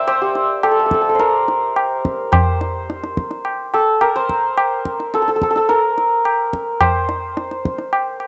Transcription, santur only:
0.00 0.45 A#4 medium
0.00 2.26 D5 medium
0.00 2.25 E5 medium
0.00 1.45 G5 medium
0.07 1.14 C5 medium
0.22 3.35 G4 medium
0.63 0.71 A4 medium
0.71 0.79 A4 medium
0.79 0.86 A4 medium
0.86 0.94 A4 medium
0.94 1.01 A4 medium
1.01 1.09 A4 medium
1.09 1.26 A4 medium
1.15 2.32 C5 medium
1.20 3.80 A#4 medium
2.32 4.15 C5 medium
3.74 4.07 A4 medium
4.01 5.20 A#4 medium
4.16 6.80 C5 medium
5.14 5.21 A4 medium
5.22 5.28 A4 medium
5.29 5.36 A4 medium
5.36 5.43 A4 medium
5.43 5.50 A4 medium
5.51 5.57 A4 medium
5.57 5.75 A4 medium
5.69 8.27 A#4 medium
6.81 8.27 C5 medium

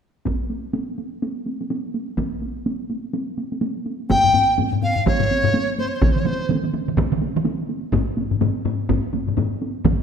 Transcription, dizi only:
4.10 4.54 G5 medium
4.83 5.05 F5 medium
5.07 5.74 C#5 medium
5.78 5.89 C5 medium
5.88 5.97 C#5 medium
5.96 6.03 C5 medium
6.02 6.13 C#5 medium
6.12 6.21 C5 medium
6.20 6.28 C#5 medium
6.26 6.50 C5 medium

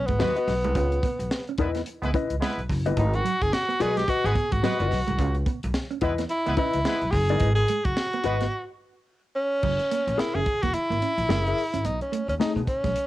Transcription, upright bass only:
0.09 0.18 G#1 medium
0.19 0.33 D#2 loud
0.47 0.64 B1 loud
0.64 0.75 C2 medium
0.75 0.97 C#2 loud
1.19 1.28 B1 medium
1.58 1.81 E2 medium
2.02 2.11 C#2 medium
2.30 2.39 C#2 medium
2.58 2.67 B1 medium
2.70 2.86 F#1 loud
2.86 2.95 G1 medium
2.97 3.19 G#1 loud
3.41 3.51 F#1 medium
3.80 4.03 B1 medium
4.24 4.34 G#1 medium
4.52 4.61 G#1 medium
4.80 4.89 F#1 medium
4.91 5.05 B1 loud
5.08 5.19 C2 loud
5.19 5.41 C#2 loud
5.64 5.73 B1 loud
6.02 6.24 E2 medium
6.47 6.56 C#2 medium
6.74 6.83 C#2 medium
7.02 7.11 B1 medium
7.13 7.30 F#1 loud
7.30 7.39 G1 medium
7.41 7.63 G#1 loud
7.85 7.94 F#1 medium
8.24 8.46 G#1 medium
9.63 9.76 F#1 loud
10.07 10.16 A#1 medium
10.18 muted upright bass stroke soft
10.35 10.44 F#1 medium
10.63 10.72 E1 medium
10.90 10.99 G#1 medium
11.18 11.27 A#1 medium
11.29 11.51 F#1 loud
11.74 11.82 G#1 medium
11.85 11.98 B1 medium
12.28 12.37 D#2 medium
12.39 muted upright bass stroke medium
12.56 12.65 B2 medium
12.84 12.93 B1 medium

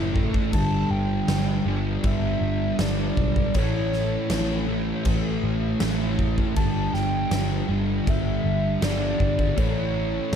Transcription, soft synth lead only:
0.54 0.92 A5 loud
0.90 1.66 G5 loud
2.06 2.82 E5 loud
2.80 3.57 D5 loud
3.56 5.06 C#5 loud
6.56 6.95 A5 loud
6.94 7.69 G5 loud
8.09 8.84 E5 loud
8.83 9.60 D5 loud
9.58 10.36 C#5 loud

